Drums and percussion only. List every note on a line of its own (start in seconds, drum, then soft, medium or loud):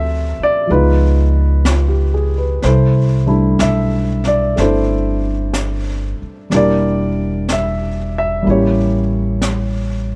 0.68 brush sweep soft
1.65 brush sweep soft
1.65 snare soft
1.65 hi-hat pedal medium
2.62 brush sweep soft
2.62 snare soft
3.59 brush sweep soft
3.59 snare soft
3.59 hi-hat pedal soft
4.24 snare soft
4.57 brush sweep soft
4.57 snare soft
5.54 brush sweep soft
5.54 snare soft
5.54 hi-hat pedal soft
6.51 brush sweep soft
6.51 snare soft
7.49 brush sweep soft
7.49 snare soft
7.49 hi-hat pedal medium
8.44 brush sweep soft
9.42 brush sweep soft
9.42 snare soft
9.42 hi-hat pedal medium